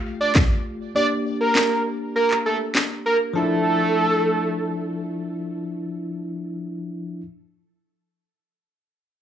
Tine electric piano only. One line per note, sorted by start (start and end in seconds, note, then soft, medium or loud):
0.00 0.91 A3 medium
0.00 0.91 F4 medium
0.00 0.92 G4 medium
0.95 3.31 A#3 medium
0.95 3.32 D4 medium
0.95 3.32 G4 medium
3.33 7.20 F3 medium
3.33 7.21 D4 medium
3.38 7.22 E4 medium